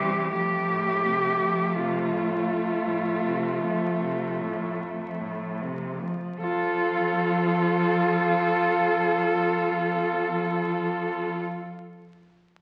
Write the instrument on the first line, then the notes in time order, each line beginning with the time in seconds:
cello
Already playing: C3 G3 G4
0.00 E3
0.31 F2 A3 G4
0.69 A2
1.06 C3
1.41 F3
1.75 C3 F4
2.13 A2
2.49 F2
2.87 A2
3.25 C3
3.62 F3
4.02 C3
4.40 A2
4.80 F2
5.21 A2
5.62 C3
6.02 F3
6.40 F2 F3 F4 A4